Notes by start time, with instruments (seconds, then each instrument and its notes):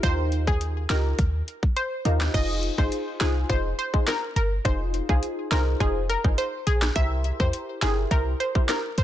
0.03 808-style bass D#2, synth stab D#4 F4 G4 A#4, synth pluck C5, kick, closed hi-hat
0.32 closed hi-hat
0.47 synth pluck G#4, kick
0.61 closed hi-hat
0.90 808-style bass C#2, synth stab D#4 F4 G4 A#4, synth pluck A#4, snare, clap, closed hi-hat
1.19 808-style bass D#2, kick, closed hi-hat
1.48 closed hi-hat
1.63 kick
1.76 synth pluck C5, closed hi-hat
2.05 808-style bass D#2, synth stab D#4 F4 G4 A#4, closed hi-hat
2.21 snare, clap
2.34 808-style bass F1, synth stab D#4 F4 G#4 C5, synth pluck D#5, kick, closed hi-hat, crash
2.63 closed hi-hat
2.78 808-style bass G#1, synth stab D#4 F4 G#4 C5, synth pluck C5, kick
2.92 closed hi-hat
3.20 808-style bass C2, synth stab D#4 F4 G#4 C5, synth pluck G#4, snare, clap, closed hi-hat
3.49 808-style bass F1, synth stab D#4 F4 G#4 C5, synth pluck C5, kick, closed hi-hat
3.79 synth pluck C5, closed hi-hat
3.94 synth stab D#4 F4 G#4 C5, kick
4.07 synth pluck A#4, snare, clap, closed hi-hat
4.36 808-style bass G1, synth pluck A#4, closed hi-hat
4.65 808-style bass F1, synth stab D#4 F4 G#4 C5, synth pluck C5, kick, closed hi-hat
4.94 closed hi-hat
5.09 808-style bass C2, synth stab D#4 F4 G#4 C5, synth pluck G#4, kick
5.23 closed hi-hat
5.51 808-style bass C2, synth stab D#4 F4 G#4 C5, synth pluck A#4, snare, clap, closed hi-hat
5.80 808-style bass F1, synth stab D#4 F4 G#4 C5, synth pluck G#4, kick, closed hi-hat
6.09 synth pluck A#4, closed hi-hat
6.24 808-style bass G1, synth stab D#4 F4 G#4 C5, kick
6.38 synth pluck C5, closed hi-hat
6.67 808-style bass A#1, synth pluck G#4, closed hi-hat
6.82 snare, clap
6.96 808-style bass C2, synth stab E4 G4 A#4 C5, synth pluck E5, kick, closed hi-hat
7.24 closed hi-hat
7.40 808-style bass E2, synth stab E4 G4 A#4 C5, synth pluck C5, kick
7.53 closed hi-hat
7.82 808-style bass G1, synth stab E4 G4 A#4 C5, synth pluck G#4, snare, clap, closed hi-hat
8.11 808-style bass C2, synth stab E4 G4 A#4 C5, synth pluck A#4, kick, closed hi-hat
8.40 synth pluck C5, closed hi-hat
8.55 synth stab E4 G4 A#4 C5, kick
8.69 synth pluck A#4, snare, clap, closed hi-hat
8.98 808-style bass C#2, synth pluck C5, closed hi-hat